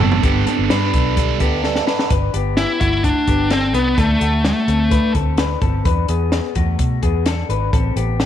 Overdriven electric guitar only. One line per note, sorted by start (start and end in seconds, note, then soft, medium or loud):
0.00 0.22 B3 soft
0.00 0.23 D4 medium
0.00 0.23 A4 medium
0.23 0.46 G3 medium
0.23 0.47 B3 medium
0.23 0.47 D4 medium
0.23 0.45 A4 medium
0.46 0.69 B3 soft
0.46 0.70 D4 medium
0.46 0.70 A4 medium
0.69 0.93 G3 medium
0.69 0.93 B3 medium
0.69 0.93 D4 medium
0.69 0.92 A4 medium
0.93 1.16 B3 soft
0.93 1.17 D4 medium
0.93 1.17 A4 medium
1.16 1.40 G3 medium
1.16 1.40 B3 medium
1.16 1.39 D4 medium
1.16 1.38 A4 medium
1.39 1.62 B3 soft
1.39 1.63 D4 soft
1.39 1.63 A4 medium
1.63 1.87 G3 medium
1.63 1.87 B3 medium
1.63 1.87 D4 medium
1.63 1.86 A4 medium
1.87 2.12 B3 soft
1.87 2.11 D4 soft
1.87 2.10 A4 medium